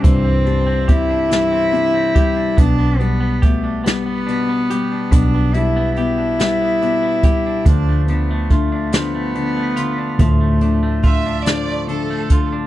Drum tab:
HH |xxxxxx|xxxxxx|xxxxxx|xxxxxx|
SD |---o--|---o--|---o--|---o--|
BD |o-o--o|o-o---|o----o|o-o---|

HH |xxxxxx|
SD |---o--|
BD |o-o--o|